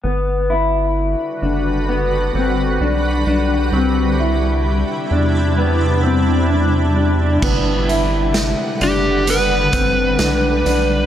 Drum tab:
CC |--------|--------|x-------|
HH |--------|--------|-xxxxxxx|
SD |--------|--------|--o---o-|
BD |--------|--------|o----o--|